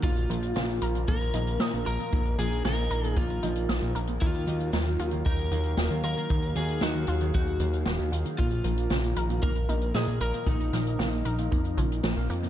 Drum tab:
HH |xxxxxxxxxxxxxxxx|xxxxxxxxxxxxxxxx|xxxxxxxxxxxxxxxx|xxxxxxxxxxxxxxxx|
SD |----o-------o---|----o-------o---|----o-------o---|----o-------o---|
BD |o-------o-------|o-------o-------|o-------o-------|o-------o-------|

HH |xxxxxxxxxxxxxxxx|xxxxxxxxxxxxxxxx|
SD |----o-------o---|--o-o-------o---|
BD |o-------o-------|o-------o-o-----|